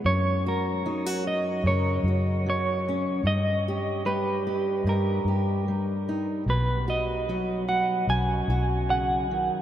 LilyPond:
<<
  \new Staff \with { instrumentName = "Clean electric guitar" } { \time 4/4 \key b \major \tempo 4 = 75 cis''8 ais'4 dis''8 cis''4 cis''4 | dis''4 b'4 ais'4. r8 | b'8 dis''4 fis''8 gis''4 fis''4 | }
  \new Staff \with { instrumentName = "Steel-string acoustic guitar" } { \time 4/4 \key b \major << { r8 fis'8 dis'16 fis'16 fis'8 ais'8 fis'4 cis'8 | r8 g'8 g'8 g'8 g'8 g'4 dis'8 | r8 fis'8 fis'8 fis'8 fis'8 fis'4. | } \\ { fis,4 fis4 cis4 fis4 | g,4 g4 g,4 g4 | b,4 fis4 fis,4 cis8 dis8 | } >> }
  \new Staff \with { instrumentName = "Fingered electric bass" } { \clef bass \time 4/4 \key b \major fis,2 fis,8 fis,4. | g,2 g,8 g,4. | b,,2 b,,8 b,,4. | }
>>